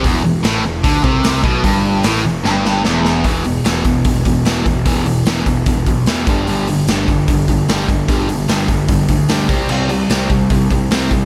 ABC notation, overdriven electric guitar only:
X:1
M:4/4
L:1/8
Q:1/4=149
K:Em
V:1 name="Overdriven electric guitar" clef=bass
E,, E,, A,, E,, D, C,2 B,, | G,,2 A,, E,, G,,2 E,,2 | [E,,B,,E,] [E,,B,,] [E,,B,,E,] [E,,B,,] [E,,B,,] [E,,B,,] [E,,B,,E,] [E,,B,,] | [E,,B,,E,] [E,,B,,] [E,,B,,E,] [E,,B,,] [E,,B,,] [E,,B,,] [E,,B,,E,] [G,,D,G,] |
[G,,D,G,] [G,,D,] [G,,D,G,] [G,,D,] [G,,D,] [G,,D,] [G,,D,G,] [G,,D,] | [G,,D,G,] [G,,D,] [G,,D,G,] [G,,D,] [G,,D,] [G,,D,] [G,,D,G,] [C,G,C] | [C,G,C] [C,G,] [C,G,C] [C,G,] [C,G,] [C,G,] [C,G,C] [C,G,] |]